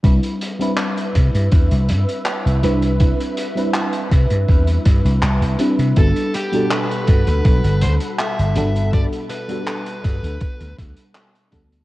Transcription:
<<
  \new Staff \with { instrumentName = "String machine" } { \time 4/4 \key c \lydian \tempo 4 = 81 <b' e''>1~ | <b' e''>1 | <a' fis'' b''>1~ | <a' fis'' b''>1 | }
  \new Staff \with { instrumentName = "Lead electric guitar" } { \time 4/4 \key c \lydian r1 | r1 | a'8 g'8 b'8. b'8. c''8 e''4 | d''8 b'4 b'4 r4. | }
  \new Staff \with { instrumentName = "FM electric piano" } { \time 4/4 \key c \lydian <g c' d' e' b'>8. <g c' d' e' b'>2~ <g c' d' e' b'>8. <g c' d' e' b'>8 | <g c' d' e' b'>8. <g c' d' e' b'>2~ <g c' d' e' b'>8. <g c' d' e' b'>8 | <g b d' fis' a'>8. <b, g d' fis' a'>2~ <b, g d' fis' a'>8. <g b d' fis' a'>8 | <g b d' fis' a'>8. <g b d' fis' a'>2~ <g b d' fis' a'>8. <g b d' fis' a'>8 | }
  \new Staff \with { instrumentName = "Slap bass" } { \clef bass \time 4/4 \key c \lydian c,16 r4 r16 c16 g,16 e,16 c,16 g,16 r8 c,16 c,8~ | c,16 r4 r16 c16 g,16 e,16 r16 g,16 c,16 c,16 c,16 r16 c16 | g,,16 r4 r16 g,16 d,16 b,,16 g,,16 d,16 r8 g,,16 g,,8~ | g,,16 r4 r16 g,16 d,16 r16 d,16 d,16 r8. d,16 r16 | }
  \new DrumStaff \with { instrumentName = "Drums" } \drummode { \time 4/4 <hh bd>16 hh16 hh16 hh16 <hc hh>16 hh16 <hh bd>16 hh16 <hh bd>16 hh16 hh16 hh16 <hc hh>16 hh16 hh16 hh16 | <hh bd>16 hh16 hh16 hh16 <hc hh>16 hh16 <hh bd>16 hh16 <hh bd>16 hh16 <hh bd>16 hh16 <hc hh>16 hh16 hh16 hh16 | <hh bd>16 hh16 hh16 hh16 <hc hh>16 hh16 <hh bd>16 hh16 <hh bd>16 hh16 hh16 hh16 <hc hh>16 hh16 hh16 hh16 | <hh bd>16 hh16 hh16 hh16 <hc hh>16 hh16 <hh bd>16 hh16 <hh bd>16 hh16 <hh bd>16 hh16 <hc hh>16 hh16 <hh bd>16 hh16 | }
>>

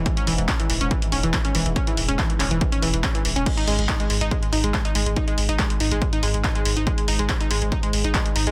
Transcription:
<<
  \new Staff \with { instrumentName = "Synth arpeggio sound" } { \clef bass \time 4/4 \key e \lydian \tempo 4 = 141 e16 cis'16 e16 e16 cis'16 e16 e16 cis'16 e16 e16 cis'16 e16 r16 cis'16 e16 e16 | cis'16 e16 e16 cis'16 e16 e16 cis'16 e16 e16 cis'16 e16 e16 cis'16 e16 e16 cis'16 | r16 dis'16 gis16 gis16 dis'16 gis16 gis16 dis'16 gis16 gis16 dis'16 gis16 r16 dis'16 gis16 gis16 | dis'16 gis16 gis16 dis'16 gis16 gis16 dis'16 gis16 gis16 dis'16 gis16 gis16 dis'16 gis16 gis16 dis'16 |
gis16 gis16 dis'16 gis16 r16 dis'16 gis16 gis16 dis'16 gis16 gis16 dis'16 gis16 gis16 dis'16 gis16 | }
  \new Staff \with { instrumentName = "Ambient pad" } { \clef bass \time 4/4 \key e \lydian gis,1~ | gis,1 | gis,1~ | gis,1~ |
gis,1 | }
  \new Staff \with { instrumentName = "Sub bass" } { \clef bass \time 4/4 \key e \lydian r8 e,,16 e,,16 r8 e,,16 e,,16 r8 e,,16 e,,16 r8 e,,16 e,,16 | r8 e,,16 e,,16 r8 e,,16 e,,16 r8 e,,16 e,,16 r8 e,,16 e,,16 | r8 gis,,16 gis,,16 r8 gis,,16 gis,,16 r8 gis,,16 gis,,16 r8 gis,,16 gis,,16 | r8 gis,,16 gis,,16 r8 gis,,16 gis,,16 r8 gis,,16 gis,,16 r8 gis,,16 gis,,16 |
r8 gis,,16 gis,,16 r8 gis,,16 gis,,16 r8 gis,,16 gis,,16 r8 gis,,16 gis,,16 | }
  \new DrumStaff \with { instrumentName = "Drums" } \drummode { \time 4/4 <hh bd>16 hh16 hho16 hh16 <hc hh bd>16 hh16 hho16 hh16 <hh bd>16 hh16 hho16 hh16 <hc hh bd>16 hh16 hho16 hh16 | <hh bd>16 hh16 hho16 hh16 <hc hh bd>16 hh16 <hc hho>16 hh16 <hh bd>16 hh16 hho16 hh16 <hc hh bd>16 hh16 hho16 hh16 | <cymc hh bd>16 hh16 hho16 hh16 <hc hh bd>16 hh16 hho16 hh16 <hh bd>16 hh16 hho16 hh16 <hc hh bd>16 hh16 hho16 hh16 | <hh bd>16 hh16 hho16 hh16 <hc hh bd>16 hh16 hho16 hh16 <hh bd>16 hh16 hho16 hh16 <hc hh bd>16 hh16 hho16 hh16 |
<hh bd>16 hh16 hho16 hh16 <hc hh bd>16 hh16 hho16 hh16 <hh bd>16 hh16 hho16 hh16 <hc hh bd>16 hh16 hho16 hh16 | }
>>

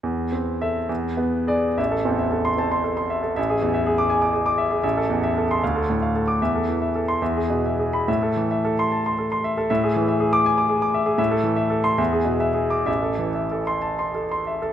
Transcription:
<<
  \new Staff \with { instrumentName = "Grand piano" } { \time 6/8 \key a \minor \tempo 4. = 75 << { r4 e''8 r4 d''8 | r4 r16 c'''8 r4 r16 | r4 r16 d'''8 r4 r16 | r4 r16 c'''16 r4 r16 d'''16 |
r4 r16 c'''16 r4 r16 b''16 | r4 r16 c'''8 r4 r16 | r4 r16 d'''8 r4 r16 | r4 r16 c'''16 r4 r16 d'''16 |
r4 r16 c'''8 r4 r16 | } \\ { r2. | e''16 a'16 e,16 e''16 a'8 a''16 c'''16 a'16 c'''16 e''16 a'16 | e''16 gis'16 e,16 e''16 gis'8 gis''16 d'''16 gis'16 d'''16 e''16 gis'16 | e''16 a'16 e,16 e''16 a'8 f''16 a'16 a,16 f''16 a'8 |
e''16 a'16 e16 e''16 a'8 e''16 gis'16 b,16 e''16 gis'8 | e''16 a'16 e16 e''16 a'8 a''16 c'''16 a'16 c'''16 e''16 a'16 | e''16 gis'16 e16 e''16 gis'8 gis''16 d'''16 gis'16 d'''16 e''16 gis'16 | e''16 a'16 e16 e''16 a'8 e''16 gis'16 b,16 e''16 gis'8 |
e''16 a'16 e16 e''16 a'8 a''16 c'''16 a'16 c'''16 e''16 a'16 | } >> }
  \new Staff \with { instrumentName = "Grand piano" } { \clef bass \time 6/8 \key a \minor e,8 c'8 a'8 e,8 b8 gis'8 | a,,8 c'4 c'4 r8 | a,,2. | a,,4. d,4. |
e,4. e,4. | a,2. | a,2. | a,4. e,4. |
a,,2. | }
>>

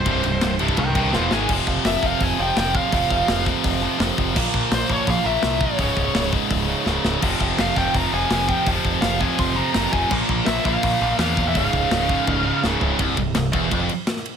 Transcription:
<<
  \new Staff \with { instrumentName = "Lead electric guitar" } { \time 4/4 \tempo 4 = 167 c''4. r8 <bes' g''>8 <bes' g''>8 <c'' f''>8 aes''8 | r4 e''8 f''8 aes''8 g''8 g''8 f''8~ | f''4. r2 r8 | r4 c''8 des''8 f''8 e''4 des''8~ |
des''4. r2 r8 | r4 f''8 g''8 bes''8 aes''4 g''8 | r4 f''8 aes''8 c'''8 bes''4 aes''8 | r4 e''8 f''4. f''8. e''16 |
f''2. r4 | r1 | }
  \new Staff \with { instrumentName = "Distorted electric guitar" } { \clef bass \time 4/4 <c, g, c>8 <c, g, c>8 <c, g, c>8 <c, g, c>8 <c, g, c>8 <c, g, c>8 <e, b, e>8 <aes, ees aes>8 | r1 | r1 | r1 |
r1 | <f, c f>4 <f, c f>8 <f, c f>8 <f, c f>4 <f, c f>8 <f, c f>8 | <f, c f>4 <f, c f>8 <f, c f>8 <f, c f>4 <f, c f>8 <f, c f>8 | <bes, f bes>4 <bes, f bes>8 <bes, f bes>8 <bes, f bes>4 <bes, f bes>8 <bes, f bes>8 |
<des, aes, des>4 <des, aes, des>8 <des, aes, des>8 <des, aes, des>4 <des, aes, des>8 <des, aes, des>8 | c,8 c,8 c,8 e,8 f,8 r4. | }
  \new Staff \with { instrumentName = "Distorted electric guitar" } { \clef bass \time 4/4 <c, g, c>8 <c, g,>8 <c, g,>8 <c, g, c>8 <c, g,>8 <c, g, c>8 <e, b, e>8 <aes, ees aes>8 | <f, c f>2~ <f, c f>8 <f, c f>8 <f, c f>4 | <f, c f>2~ <f, c f>8 <f, c f>8 <f, c f>4 | <bes, f bes>2~ <bes, f bes>8 <bes, f bes>8 <bes, f bes>4 |
<des, aes, des>2~ <des, aes, des>8 <des, aes, des>8 <des, aes, des>4 | <f, c f>2~ <f, c f>8 <f, c f>8 <f, c f>4 | <f, c f>2~ <f, c f>8 <f, c f>8 <f, c f>4 | <bes, f bes>2~ <bes, f bes>8 <bes, f bes>8 <bes, f bes>4 |
<des, aes, des>2~ <des, aes, des>8 <des, aes, des>8 <des, aes, des>4 | c,8 c,8 c,8 e,8 f,8 r4. | }
  \new Staff \with { instrumentName = "Distorted electric guitar" } { \clef bass \time 4/4 <c, g, c>8 <c, g,>8 <c, g,>8 <c, g, c>8 <c, g,>8 <c, g, c>8 <e, b, e>8 <aes, ees aes>8 | <f, c f>4. <f, c f>2~ <f, c f>8 | <f, c f>4. <f, c f>2~ <f, c f>8 | <bes, f bes>4. <bes, f bes>2~ <bes, f bes>8 |
<des, aes, des>4. <des, aes, des>2~ <des, aes, des>8 | <f, c f>4. <f, c f>2~ <f, c f>8 | <f, c f>4. <f, c f>2~ <f, c f>8 | <bes, f bes>4. <bes, f bes>2~ <bes, f bes>8 |
<des, aes, des>4. <des, aes, des>2~ <des, aes, des>8 | c,8 c,8 c,8 e,8 f,8 r4. | }
  \new Staff \with { instrumentName = "Picked electric bass" } { \clef bass \time 4/4 c,,8 c,,8 c,,8 c,,8 c,4 e,,8 aes,,8 | f,,8 f,,8 f,,8 f,,8 f,,8 f,,8 f,,4 | f,,8 f,,8 f,,4 f,,4 f,,8 f,,8 | bes,,8 bes,,8 bes,,8 bes,,8 bes,,8 bes,,8 c,4 |
des,,8 des,,8 des,,4 des,,4 des,,8 des,,8 | f,,8 f,,8 f,,8 f,,8 f,,8 f,,8 f,,4 | f,,8 f,,8 f,,4 f,,4 f,,8 f,,8 | bes,,8 bes,,8 bes,,8 bes,,8 bes,,8 bes,,8 e,4 |
des,,8 des,,8 des,,4 des,,4 des,,8 des,,8 | c,,8 c,,8 c,,8 e,,8 f,,8 r4. | }
  \new DrumStaff \with { instrumentName = "Drums" } \drummode { \time 4/4 <bd cymr>8 cymr8 <cymr sn>8 cymr16 bd16 <bd cymr>8 <bd cymr>8 sn8 sn8 | <cymc bd>8 bd8 <hho sn>8 bd8 <hho bd>4 <hho sn>8 bd8 | <hho bd>8 bd8 <hho sn>8 <bd sn>8 <hho bd>4 <hho sn>8 bd8 | <cymc bd>8 bd8 <hho sn>8 bd8 <hho bd>4 <hho sn>8 bd8 |
<hho bd>8 bd8 <hho sn>8 bd8 <hho bd>4 sn8 sn8 | <cymc bd>8 bd8 <hho sn>8 <bd sn>8 <hho bd>4 <hho sn>8 bd8 | <hho bd>8 bd8 <hho sn>8 bd8 <hho bd>4 <hho sn>8 bd8 | <cymc bd>8 bd8 <hho sn>8 <bd sn>8 <hho bd>4 <hho sn>8 bd8 |
<hho bd>8 bd8 <hho sn>8 bd8 <bd tommh>4 sn8 tomfh8 | <bd cymr>8 <bd cymr>8 <cymr sn>8 <bd cymr>8 <bd cymr>8 cymr8 <cymr sn>16 sn16 cymr8 | }
>>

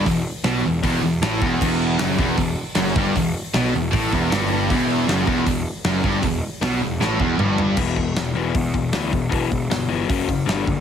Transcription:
<<
  \new Staff \with { instrumentName = "Overdriven electric guitar" } { \clef bass \time 4/4 \key e \minor \tempo 4 = 155 e,8 r8 b,8 e,8 e,8 e,8 a,8 e,8 | e,4 fis,8 e,8 e,8 r8 fis,8 g,8 | e,8 r8 b,8 e,8 a,8 e,8 g,4 | e,4 fis,8 e,8 e,8 r8 fis,8 g,8 |
e,8 r8 b,8 e,8 a,8 e,8 g,4 | <e, b, e>8 <e, b,>8 <e, b,>8 <e, b, e>8 <e, b,>8 <e, b,>8 <e, b, e>8 <e, b,>8 | <e, b, e>8 <e, b,>8 <e, b,>8 <e, b, e>8 <fis, cis fis>8 <fis, cis>8 <g, d g>8 <g, d>8 | }
  \new Staff \with { instrumentName = "Distorted electric guitar" } { \clef bass \time 4/4 \key e \minor e,8 r8 b,8 e,8 e,8 e,8 a,8 e,8 | e,4 fis,8 e,8 e,8 r8 fis,8 g,8 | e,8 r8 b,8 e,8 a,8 e,8 g,4 | e,4 fis,8 e,8 e,8 r8 fis,8 g,8 |
e,8 r8 b,8 e,8 a,8 e,8 g,4 | r1 | r1 | }
  \new Staff \with { instrumentName = "Distorted electric guitar" } { \clef bass \time 4/4 \key e \minor e,8 r8 b,8 e,8 e,8 e,8 a,8 e,8 | e,4 fis,8 e,8 e,8 r8 fis,8 g,8 | e,8 r8 b,8 e,8 a,8 e,8 g,4 | e,4 fis,8 e,8 e,8 r8 fis,8 g,8 |
e,8 r8 b,8 e,8 a,8 e,8 g,4 | r1 | r1 | }
  \new Staff \with { instrumentName = "Picked electric bass" } { \clef bass \time 4/4 \key e \minor e,,8 r8 b,,8 e,,8 e,,8 e,,8 a,,8 e,,8 | e,,4 fis,,8 e,,8 e,,8 r8 fis,,8 g,,8 | e,,8 r8 b,,8 e,,8 a,,8 e,,8 g,,4 | e,,4 fis,,8 e,,8 e,,8 r8 fis,,8 g,,8 |
e,,8 r8 b,,8 e,,8 a,,8 e,,8 g,,4 | e,,4 e,,8 e,,8 e,8 e,,8 d,8 e,,8 | e,,8 e,,8 g,,4 fis,,4 g,,8 fis,,8 | }
  \new DrumStaff \with { instrumentName = "Drums" } \drummode { \time 4/4 <hho bd>4 <hho sn>4 <hho bd>4 <hho sn>8 bd8 | <cymc bd>4 <hho sn>8 bd8 <hho bd>4 <hho sn>8 bd8 | <hho bd>4 <hho sn>4 <hho bd>8 bd8 <hho sn>4 | <hho bd>4 <hho sn>8 bd8 <hho bd>4 <hho sn>8 bd8 |
<hho bd>4 <hho sn>4 sn8 bd8 toml8 tomfh8 | <cymc bd>8 bd8 <hho sn>4 <hho bd>8 bd8 <hho sn>8 bd8 | <hho bd>8 bd8 <hho sn>4 <hho bd>8 bd8 <hho sn>8 bd8 | }
>>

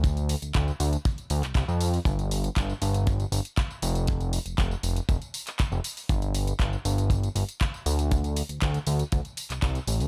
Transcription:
<<
  \new Staff \with { instrumentName = "Analog synth bass" } { \clef bass \time 4/4 \key d \minor \tempo 4 = 119 d,8 r16 d,16 d,16 r16 d,16 r8. d,16 c,16 c,16 f,8 r16 | g,,8. r16 g,,16 r16 g,,8. r16 g,,16 r8. f,,8~ | f,,8 r16 f,,16 f,,16 r16 f,,16 r16 f,,16 r4 f,,16 r8 | g,,8. r16 g,,16 r16 g,,8. r16 g,,16 r8. d,8~ |
d,8 r16 d,16 d,16 r16 d,16 r16 d,16 r8 c,16 c,16 r16 a,,16 d,16 | }
  \new DrumStaff \with { instrumentName = "Drums" } \drummode { \time 4/4 <hh bd tamb>16 <hh tamb>16 <hho tamb>16 <hh tamb>16 <hc hh bd tamb>16 tamb16 <hho tamb>16 <hh tamb>16 <hh bd tamb>16 <hh tamb>16 <hho tamb>16 <hc hh tamb>16 <hc hh bd tamb>16 tamb16 <hho tamb>16 <hho tamb>16 | <hh bd tamb>16 <hh tamb>16 <hho tamb>16 <hh tamb>16 <hc hh bd tamb>16 tamb16 <hho tamb>16 <hh tamb>16 <hh bd tamb>16 <hh tamb>16 <hho tamb>16 <hh tamb>16 <hc hh bd tamb>16 tamb16 <hho tamb>16 <hh tamb>16 | <hh bd tamb>16 <hh tamb>16 <hho tamb>16 <hh tamb>16 <hc hh bd tamb>16 tamb16 <hho tamb>16 <hh tamb>16 <hh bd tamb>16 <hh tamb>16 <hho tamb>16 <hc hh tamb>16 <hc hh bd tamb>16 tamb16 <hho tamb>16 <hho tamb>16 | <hh bd tamb>16 <hh tamb>16 <hho tamb>16 <hh tamb>16 <hc hh bd tamb>16 tamb16 <hho tamb>16 <hh tamb>16 <hh bd tamb>16 <hh tamb>16 <hho tamb>16 <hh tamb>16 <hc hh bd tamb>16 tamb16 <hho tamb>16 <hh tamb>16 |
<hh bd tamb>16 <hh tamb>16 <hho tamb>16 <hh tamb>16 <hc hh bd tamb>16 <hh tamb>16 <hho tamb>16 <hh tamb>16 <hh bd tamb>16 <hh tamb>16 <hho tamb>16 <hc hh tamb>16 <hc hh bd tamb>16 <hh tamb>16 <hho tamb>16 <hho tamb>16 | }
>>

